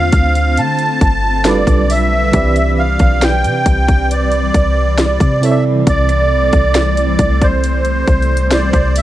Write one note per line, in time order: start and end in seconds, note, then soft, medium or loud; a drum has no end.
0.00 0.12 E2 loud
0.00 1.41 D3 medium
0.00 1.42 D3 medium
0.00 1.43 A3 medium
0.00 1.42 C4 medium
0.00 1.41 D4 medium
0.00 1.42 F4 medium
0.00 2.30 F4 medium
0.00 1.43 C5 medium
0.00 0.61 F5 loud
0.12 0.59 D2 loud
0.12 kick loud
0.12 closed hi-hat medium
0.35 closed hi-hat medium
0.57 0.99 D3 loud
0.57 1.49 A5 loud
0.57 closed hi-hat medium
0.79 closed hi-hat soft
1.01 1.65 G1 loud
1.01 kick loud
1.01 closed hi-hat medium
1.45 2.33 G3 medium
1.45 5.39 G3 medium
1.45 2.34 D4 medium
1.45 2.34 F4 medium
1.45 2.34 A4 medium
1.45 2.34 B4 medium
1.45 1.92 D5 loud
1.45 snare loud
1.45 closed hi-hat medium
1.67 2.31 B1 loud
1.67 kick medium
1.67 closed hi-hat medium
1.90 2.81 E5 loud
1.90 open hi-hat medium
2.32 2.97 C2 loud
2.32 5.38 E3 medium
2.32 9.02 E3 medium
2.32 9.02 C4 medium
2.32 5.38 C4 medium
2.32 5.39 G4 medium
2.32 5.39 B4 medium
2.32 kick loud
2.32 closed hi-hat medium
2.36 5.40 D5 medium
2.56 closed hi-hat medium
2.79 3.24 F5 loud
2.99 3.46 B1 loud
2.99 kick loud
2.99 closed hi-hat soft
3.22 4.14 G5 loud
3.22 snare loud
3.22 closed hi-hat medium
3.44 3.65 C3 loud
3.44 closed hi-hat medium
3.66 4.51 C2 loud
3.66 kick medium
3.66 closed hi-hat medium
3.88 kick loud
3.88 closed hi-hat medium
4.11 4.99 D5 loud
4.11 closed hi-hat medium
4.32 closed hi-hat soft
4.54 5.18 C2 loud
4.54 kick medium
4.54 closed hi-hat medium
4.98 5.45 D5 loud
4.98 snare loud
4.98 closed hi-hat medium
5.20 5.84 C3 loud
5.20 kick medium
5.20 closed hi-hat medium
5.41 8.91 C3 medium
5.41 9.02 G3 medium
5.41 9.02 A3 medium
5.41 8.91 C4 medium
5.41 8.91 E4 medium
5.41 8.92 A4 medium
5.41 5.64 E5 medium
5.41 open hi-hat medium
5.45 5.50 C#5 medium
5.51 8.96 D5 medium
5.87 6.50 C2 loud
5.87 7.47 D5 loud
5.87 kick loud
5.87 closed hi-hat medium
6.09 cross-stick medium
6.09 closed hi-hat medium
6.53 7.17 C2 loud
6.53 kick loud
6.53 closed hi-hat soft
6.75 snare loud
6.75 closed hi-hat medium
6.97 closed hi-hat medium
7.19 8.04 C2 loud
7.19 kick medium
7.19 closed hi-hat medium
7.41 8.93 C5 medium
7.41 kick loud
7.41 closed hi-hat medium
7.64 closed hi-hat medium
7.85 closed hi-hat soft
8.07 8.71 C2 loud
8.07 kick loud
8.07 closed hi-hat soft
8.22 closed hi-hat soft
8.37 closed hi-hat medium
8.51 8.98 D5 loud
8.51 snare loud
8.51 closed hi-hat medium
8.73 9.02 C2 loud
8.73 kick medium
8.73 cross-stick medium
8.73 closed hi-hat medium
8.96 9.02 E5 loud
8.96 closed hi-hat medium
8.96 open hi-hat medium